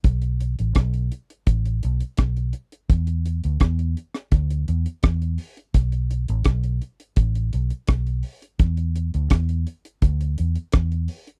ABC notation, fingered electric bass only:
X:1
M:4/4
L:1/16
Q:1/4=84
K:Amix
V:1 name="Fingered electric bass" clef=bass
B,,,3 A,,, B,,,2 z2 A,,,2 B,,, z B,,,2 z2 | E,,3 D,, E,,2 z2 D,,2 E,, z E,,2 z2 | B,,,3 A,,, B,,,2 z2 A,,,2 B,,, z B,,,2 z2 | E,,3 D,, E,,2 z2 D,,2 E,, z E,,2 z2 |]